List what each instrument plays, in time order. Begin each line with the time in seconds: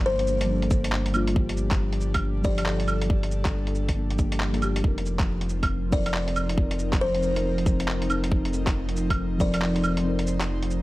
Already playing: sub bass G1, synth keys F3 A#3 D4 G4, analog synth pad G3 A#3 D4
0.06 kalimba C5
0.19 closed hi-hat
0.27 cabasa
0.41 closed hi-hat
0.45 synth keys F3 A#3
0.51 synth keys D4 A4
0.62 closed hi-hat
0.71 kick, cabasa
0.84 closed hi-hat
0.92 clap
1.06 closed hi-hat
1.12 synth keys F3 A#3 D4, cabasa, claves
1.16 synth keys F4
1.27 closed hi-hat
1.31 synth keys F3 A#3
1.36 synth keys D4 G4, kick
1.49 closed hi-hat
1.57 cabasa
1.71 kick, clap, closed hi-hat
1.93 closed hi-hat
2.01 cabasa
2.14 kick, closed hi-hat, claves
2.19 analog synth pad A4
2.42 synth keys F3 A#3 D4, kalimba D5, kick, cabasa
2.47 synth keys G4
2.58 closed hi-hat, claves
2.66 clap
2.80 closed hi-hat
2.88 cabasa, claves
3.01 closed hi-hat
3.06 synth keys F3 A#3
3.10 synth keys D4 G4, kick
3.23 closed hi-hat
3.31 cabasa
3.45 kick, clap, closed hi-hat
3.67 closed hi-hat
3.75 cabasa
3.89 kick, closed hi-hat
3.94 synth keys F3 A#3 D4
3.99 synth keys A4
4.11 closed hi-hat
4.17 synth keys F3 A#3 D4 G4, kick, cabasa
4.32 closed hi-hat
4.40 clap
4.52 synth keys F3 A#3 D4 A4, closed hi-hat
4.60 synth keys F3 A#3 D4 G4, cabasa, claves
4.76 synth keys F3, closed hi-hat
4.82 sub bass F1, analog synth pad F3, synth keys C4 D#4, kick
4.88 synth keys A#4
4.98 closed hi-hat
5.06 cabasa
5.12 analog synth pad C4
5.19 kick, clap, closed hi-hat
5.41 closed hi-hat
5.49 cabasa
5.63 kick, closed hi-hat, claves
5.69 analog synth pad D#4
5.90 synth keys F3 C4 D#4 A#4, kalimba D5, kick, cabasa
6.06 closed hi-hat, claves
6.14 analog synth pad A#4, clap
6.28 closed hi-hat
6.36 cabasa, claves
6.49 closed hi-hat
6.54 synth keys F3 C4, kick
6.59 synth keys D#4 A#4
6.71 closed hi-hat
6.79 cabasa
6.93 kick, clap, closed hi-hat
7.01 kalimba C5
7.14 closed hi-hat
7.22 cabasa
7.36 closed hi-hat
7.40 synth keys F3 C4
7.46 synth keys D#4 C5
7.58 closed hi-hat
7.66 kick, cabasa
7.80 closed hi-hat
7.88 clap
8.02 closed hi-hat
8.07 synth keys F3 C4 D#4, cabasa, claves
8.11 synth keys A4
8.24 synth keys F3, closed hi-hat
8.30 synth keys C4 D#4, kick
8.35 synth keys A#4
8.45 closed hi-hat
8.53 cabasa
8.67 kick, clap, closed hi-hat
8.89 closed hi-hat
8.97 cabasa
9.10 kick, closed hi-hat, claves
9.38 synth keys F3 C4 D#4, kalimba D5, kick, cabasa
9.42 synth keys A#4
9.54 closed hi-hat, claves
9.61 analog synth pad C5, clap
9.76 closed hi-hat
9.84 cabasa, claves
9.97 closed hi-hat
10.01 synth keys F3 C4
10.06 synth keys D#4 A#4
10.19 closed hi-hat
10.27 cabasa
10.41 clap, closed hi-hat
10.62 closed hi-hat
10.71 cabasa